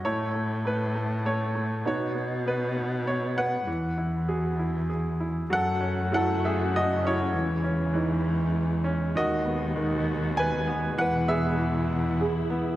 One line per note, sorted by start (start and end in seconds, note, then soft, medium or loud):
0.04 1.87 A2 medium
0.04 0.33 A3 medium
0.04 0.92 E4 soft
0.04 0.67 C#5 medium
0.35 0.63 A3 soft
0.65 0.94 A3 soft
0.65 1.28 B4 medium
0.95 1.24 A3 soft
1.25 1.53 A3 soft
1.25 1.86 C#5 medium
1.55 1.85 A3 medium
1.85 3.69 B2 medium
1.85 2.13 B3 medium
1.85 3.46 D#4 medium
1.85 2.73 F#4 soft
1.85 2.49 C#5 medium
2.15 2.44 B3 soft
2.46 2.75 B3 medium
2.46 3.09 B4 medium
2.76 3.04 B3 soft
3.05 3.35 B3 soft
3.05 3.38 C#5 medium
3.36 3.66 B3 soft
3.36 4.87 B4 medium
3.36 4.86 F#5 medium
3.67 5.48 E2 medium
3.67 5.47 E3 medium
3.98 4.58 E4 soft
4.28 5.78 F#4 soft
4.28 4.88 G#4 medium
4.59 5.19 E4 soft
4.90 5.49 G#4 soft
5.20 5.50 E4 soft
5.50 7.35 F#2 medium
5.50 9.11 C#3 medium
5.50 6.10 F#3 medium
5.50 7.32 A3 medium
5.50 7.32 F#4 medium
5.50 6.13 F#5 loud
5.54 6.10 A4 medium
5.81 6.99 C#4 soft
6.12 7.30 F#3 medium
6.12 7.60 E4 medium
6.12 6.42 A4 medium
6.12 6.45 F#5 loud
6.45 6.73 G#4 medium
6.45 6.75 E5 medium
6.76 7.04 F#4 medium
6.76 7.06 D#5 medium
7.03 7.32 C#4 soft
7.07 7.62 E4 medium
7.07 7.62 C#5 medium
7.33 9.17 E2 medium
7.33 7.92 E3 medium
7.33 9.13 E3 medium
7.33 12.76 G#3 medium
7.64 8.81 C#4 soft
7.94 9.11 E3 medium
7.94 9.42 D#4 soft
8.84 9.14 C#4 medium
9.15 10.99 D#2 medium
9.15 12.76 B2 medium
9.15 9.74 D#3 medium
9.15 10.96 F#4 medium
9.15 10.34 F#4 medium
9.15 10.41 D#5 medium
9.45 10.63 B3 soft
9.76 10.94 D#3 medium
10.37 10.95 B4 medium
10.37 11.00 G#5 loud
10.67 10.97 B3 medium
10.97 12.76 E2 medium
10.97 11.56 E3 medium
10.97 12.76 E4 medium
10.97 11.28 B4 medium
10.97 11.29 F#5 loud
11.28 12.47 B3 medium
11.28 12.19 G#4 soft
11.28 12.48 G#4 medium
11.28 12.47 E5 medium
11.58 12.76 E3 medium
12.21 12.76 G#4 medium
12.50 12.76 B3 soft